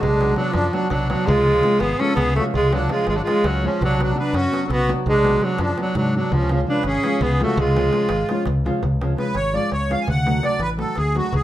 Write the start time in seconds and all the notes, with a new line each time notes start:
0.00 B1 G#3 D4, darbuka dum
0.20 F#3 B3 D4 F#4, darbuka tek
0.29 darbuka tek
0.36 F#3 B3 D4 F#4, darbuka tek
0.52 F#2 F3 D4, darbuka tek
0.72 F#3 B3 D4 F#4, darbuka tek
0.90 B1 F#3 D4, darbuka tek, darbuka dum
1.00 darbuka tek
1.09 F#3 B3 D4 F#4, darbuka tek
1.27 C#2 G#3 F4, darbuka dum
1.46 F3 G#3 C#4 F4
1.55 darbuka tek
1.62 F3 G#3 C#4 F4, darbuka tek
1.80 G#1 B3 G#4, darbuka tek
1.99 F3 G#3 C#4 F4 A4, darbuka tek
2.16 C#2 B3 G#4, darbuka tek, darbuka dum
2.27 darbuka tek
2.36 F3 G#3 A3 C#4 F4 F#4, darbuka tek
2.54 C#2 G#3 F4, darbuka dum
2.63 darbuka tek
2.72 F3 F#3 G#3 C#4 D4 F4, darbuka tek
2.81 darbuka tek
2.89 F3 G#3 C#4 F4, darbuka tek
2.99 darbuka tek
3.07 G#1 G#3 F4, darbuka tek
3.14 F#3 D4
3.23 F3 G#3 F4
3.27 G#3 C#4 F4, darbuka tek
3.44 C#2 F#3 C#4, darbuka tek
3.55 darbuka tek
3.63 F3 G#3 C#4 F4
3.74 darbuka tek
3.81 B1 F#3 D4, darbuka dum
3.98 F#3 B3 D4 F#4, darbuka tek
4.03 F#3
4.09 darbuka tek
4.14 F#3 B3 D4 F#4
4.19 D4 B4
4.33 F#2 C#4 F#4, darbuka tek
4.51 F#3 B3 D4 F#4, darbuka tek
4.66 B1 C#4 A4
4.71 B3 F#4, darbuka tek, darbuka dum
4.80 darbuka tek
4.88 F#3 B3 D4 F#4, darbuka tek
5.06 B1 G#3 D4, darbuka dum
5.23 F#3 B3 D4 F#4, darbuka tek
5.33 darbuka tek
5.41 F#3 B3 D4 F#4, darbuka tek
5.59 F#2 F3 D4, darbuka tek
5.77 F#3 B3 D4 F#4, darbuka tek
5.82 F#3
5.95 G#2 F#3 D4, darbuka tek, darbuka dum
6.05 darbuka tek
6.14 F#3 B3 D4 F#4
6.32 C#2 F3 C#4, darbuka dum
6.49 F3 G#3 C#4 F4, darbuka tek
6.54 C#4
6.67 F3 G#3 C#4 D4 F4 B4
6.83 G#1 C#4, darbuka tek
6.87 G#4
7.03 F3 G#3 C#4 F4, darbuka tek
7.21 C#2 B3 G#4, darbuka tek, darbuka dum
7.31 darbuka tek
7.39 F3 G#3 A3 C#4 F4, darbuka tek
7.44 F#4
7.57 C#2 G#3 F4, darbuka dum
7.67 darbuka tek
7.75 F3 G#3 C#4 F4, darbuka tek
7.92 F3 G#3 C#4 F4, darbuka tek
8.09 G#1, darbuka tek
8.20 darbuka tek
8.29 F3 G#3 C#4 F4, darbuka tek
8.46 C#2, darbuka tek, darbuka dum
8.65 F3 G#3 C#4 F4, darbuka tek
8.75 darbuka tek
8.83 C#2, darbuka dum
9.01 F3 G#3 C#4 F4, darbuka tek
9.16 F3 G#3 C#4 F4 B4, darbuka tek
9.35 G#1 C#5, darbuka tek
9.45 darbuka tek
9.53 F3 G#3 C#4 F4 D5
9.72 C#2 C#5, darbuka tek
9.82 darbuka tek
9.89 F3 G#3 C#4 F4 F5, darbuka tek
10.00 G#5, darbuka tek
10.08 D2 F#5, darbuka dum
10.25 F#3 A3 D4 F#4, darbuka tek
10.42 F#3 A3 D4 F#4 D5, darbuka tek
10.59 A1 B4, darbuka tek
10.69 darbuka tek
10.77 F#3 A3 D4 F#4 A4, darbuka tek
10.96 D2 G#4, darbuka tek
11.05 darbuka tek
11.15 F#3 A3 D4 F#4, darbuka tek
11.25 darbuka tek
11.32 C#2 G#4, darbuka dum